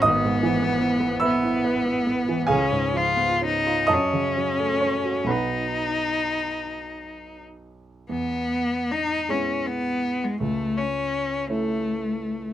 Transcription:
X:1
M:6/8
L:1/16
Q:3/8=48
K:E
V:1 name="Grand piano"
[dd']6 [ebe']4 z2 | [G^eg]6 [dad']4 [cc']2 | [Bfb]6 z6 | z12 |
z12 |]
V:2 name="Grand piano"
G,,, G,, E, B, E B, B E B E B, E, | C,, G,, ^E, B, C ^E F,, C, F, A, C F | [B,,,F,B,D]12 | E,,6 [G,B,E]6 |
C,,6 [A,CE]6 |]
V:3 name="Cello"
B,6 B,6 | C2 ^E2 D2 C6 | D8- D z3 | B,4 D2 C2 B,3 G, |
A,2 C4 A,6 |]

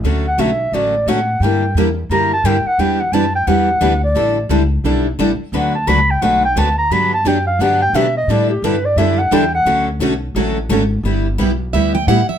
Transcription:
X:1
M:4/4
L:1/16
Q:"Swing" 1/4=174
K:D
V:1 name="Clarinet"
z2 f2 e4 d4 f4 | g4 z4 _b2 a2 g2 f2 | g2 f2 a2 g2 f6 d2- | d4 z12 |
f2 a2 b2 g2 f2 g2 a2 _b2 | b2 a2 g2 =f2 ^f2 g2 e2 _e2 | d2 G2 B2 d2 e2 f2 g2 f2- | f2 z12 z2 |
[K:G] z16 |]
V:2 name="Steel-string acoustic guitar"
z16 | z16 | z16 | z16 |
z16 | z16 | z16 | z16 |
[K:G] z8 e2 g2 f2 e2 |]
V:3 name="Steel-string acoustic guitar"
[D,A,CFA]2 z2 [D,A,CFA] z3 [D,A,CFA]2 z2 [D,A,CFA] z3 | [D,G,_B,EG]2 z2 [D,G,B,EG] z3 [D,G,B,EG]2 z2 [D,G,B,EG] z3 | [E,G,DEB]2 z2 [E,G,DEB] z3 [E,G,DEB]2 z2 [E,G,DEB] z3 | [D,G,DEA]2 z2 [D,G,DEA] z3 [D,G,DEA]2 z2 [D,G,DEA] z3 |
[D,F,B,FB]2 z2 [D,F,B,FB] z3 [D,F,B,FB]2 z2 [D,F,B,FB] z3 | [D,F,B,DG]2 z2 [D,F,B,DG] z3 [D,F,B,DG]2 z2 [D,F,B,DG] z3 | [D,G,DEA]2 z2 [D,G,DEA] z3 [D,G,DEA]2 z2 [D,G,DEA] z3 | [D,A,CFA]2 z2 [D,A,CFA] z3 [D,A,CFA]2 z2 [D,A,CFA] z3 |
[K:G] [G,B,EG]2 z2 [G,B,EG] z3 [G,B,EG]2 z2 [G,B,EG] z3 |]
V:4 name="Steel-string acoustic guitar"
[D,F,A,CF]2 z2 [D,F,A,CF] z3 [D,F,A,CF]2 z2 [D,F,A,CF] z3 | [D,G,_B,EG]2 z2 [D,G,B,EG] z3 [D,G,B,EG]2 z2 [D,G,B,EG] z3 | [E,B,DG]2 z2 [E,B,DG] z3 [E,B,DG]2 z2 [E,B,DG] z3 | [D,G,DEA]2 z2 [D,G,DEA] z3 [D,G,DEA]2 z2 [D,G,DEA] z3 |
[D,F,A,DFB]2 z2 [D,F,A,DFB] z3 [D,F,A,DFB]2 z2 [D,F,A,DFB] z3 | [D,F,B,DG]2 z2 [D,F,B,DG] z3 [D,F,B,DG]2 z2 [D,F,B,DG] z3 | [D,G,DEA]2 z2 [D,G,DEA] z3 [D,G,DEA]2 z2 [D,G,DEA] z3 | [D,F,A,CF]2 z2 [D,F,A,CF] z3 [D,F,A,CF]2 z2 [D,F,A,CF] z3 |
[K:G] [G,B,EG]2 z2 [G,B,EG] z3 [G,B,EG]2 z2 [G,B,EG] z3 |]
V:5 name="Upright bass" clef=bass
D,,4 B,,,4 A,,,4 A,,4 | G,,4 E,,4 F,,4 G,,2 z2 | E,,4 F,,4 E,,4 D,,4 | A,,,4 C,,4 B,,,4 A,,,2 z2 |
D,,4 C,,4 B,,,4 D,,4 | G,,4 F,,4 G,,4 B,,4 | A,,4 G,,4 F,,4 E,,4 | D,,4 B,,,4 A,,,4 ^G,,,4 |
[K:G] G,,,4 B,,,4 D,,4 A,,2 z2 |]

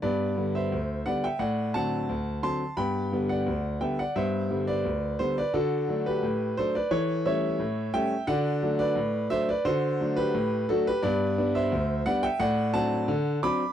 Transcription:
X:1
M:2/4
L:1/16
Q:1/4=87
K:G
V:1 name="Grand piano"
[Bd]3 [ce]3 [df] [eg] | [df]2 [fa]4 [ac']2 | [gb]3 [df]3 [eg] [df] | [ce]3 [Bd]3 [Ac] [Bd] |
[FA]3 [GB]3 [Ac] [Bd] | [A^c]2 [ce]4 [eg]2 | [df]3 [Bd]3 [ce] [Bd] | [Ac]3 [GB]3 [FA] [GB] |
[Bd]3 [ce]3 [df] [eg] | [df]2 [fa]4 [bd']2 |]
V:2 name="Grand piano" clef=bass
[G,,B,]2 [D,G,B,]2 D,,2 [D,G,B,]2 | A,,2 [D,F,C]2 D,,2 [D,F,C]2 | [G,,B,]2 [D,G,B,]2 D,,2 [D,G,B,]2 | [G,,B,]2 [D,G,B,]2 D,,2 [D,G,B,]2 |
D,2 [F,A,D]2 A,,2 [F,A,D]2 | E,2 [G,A,^C]2 A,,2 [G,A,C]2 | [D,F]2 [F,A,D]2 A,,2 [F,A,D]2 | [D,F]2 [F,A,D]2 A,,2 [F,A,D]2 |
[G,,B,]2 [G,B,D]2 D,,2 [G,B,D]2 | A,,2 [F,CD]2 D,2 [F,CD]2 |]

